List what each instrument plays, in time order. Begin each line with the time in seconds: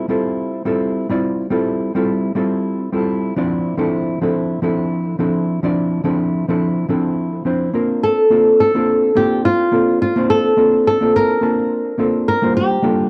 0.09 hollow-body jazz guitar G3 C4 E4 F4 A4
0.65 hollow-body jazz guitar G3 C4 E4 F4 A4
1.09 hollow-body jazz guitar G3 C4 E4 F4 D5
1.50 hollow-body jazz guitar G3 C4 E4 F4 A4
1.95 hollow-body jazz guitar G3 C4 E4 F4 A4
2.35 hollow-body jazz guitar G3 C4 E4 F4 A4
2.92 hollow-body jazz guitar G3 C4 E4 F4 A4
3.36 hollow-body jazz guitar F3 C4 D4 E4 D5
3.77 hollow-body jazz guitar F3 C4 D4 E4 A4
4.21 hollow-body jazz guitar F3 C4 D4 E4 A4
4.62 hollow-body jazz guitar F3 C4 D4 E4 A4
5.19 hollow-body jazz guitar F3 C4 D4 E4 A4
5.63 hollow-body jazz guitar F3 C4 D4 E4 D5
6.04 hollow-body jazz guitar F3 C4 D4 E4 A4
6.48 hollow-body jazz guitar F3 C4 D4 E4 A4
6.88 hollow-body jazz guitar F3 C4 D4 E4 A4
7.45 hollow-body jazz guitar F3 C4 D4 E4 C5
7.74 hollow-body jazz guitar A#3 C4 D4 F4 A#4
8.04 nylon-string guitar A4
8.30 hollow-body jazz guitar A#3 C4 D4 F4 A4
8.60 nylon-string guitar A4
8.75 hollow-body jazz guitar A#3 C4 D4 F4 A4
9.15 hollow-body jazz guitar A#3 C4 D4 F4 A4, nylon-string guitar G4
9.45 nylon-string guitar F4
9.72 hollow-body jazz guitar A#3 C4 D4 F4 A4
10.02 nylon-string guitar F4
10.16 hollow-body jazz guitar A#3 C4 D4 F4 C5
10.30 nylon-string guitar A4
10.57 hollow-body jazz guitar A#3 C4 D4 F4 A4
10.87 nylon-string guitar A4
11.01 hollow-body jazz guitar A#3 C4 D4 F4 A4
11.16 nylon-string guitar A#4
11.41 hollow-body jazz guitar A#3 C4 D4 F4 A5
11.98 hollow-body jazz guitar A#3 C4 D4 F4 A4
12.28 nylon-string guitar A#4
12.42 hollow-body jazz guitar G3 A#3 D4 F4 C5
12.57 nylon-string guitar G4
12.82 hollow-body jazz guitar G3 A#3 D4 F4 A4